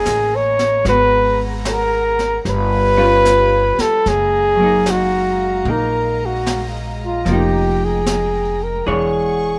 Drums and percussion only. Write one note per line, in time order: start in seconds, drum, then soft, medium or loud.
0.06 snare soft
0.06 hi-hat pedal soft
0.59 snare soft
0.85 brush sweep soft
0.85 snare soft
1.65 snare medium
1.65 hi-hat pedal medium
2.19 snare soft
2.45 brush sweep soft
2.45 snare soft
3.25 snare soft
3.25 hi-hat pedal medium
3.79 snare soft
4.06 brush sweep soft
4.06 snare soft
4.86 snare soft
4.86 hi-hat pedal medium
5.66 brush sweep soft
6.46 snare soft
6.46 hi-hat pedal medium
7.26 brush sweep soft
7.26 snare soft
8.06 snare soft
8.06 hi-hat pedal medium
8.87 brush sweep soft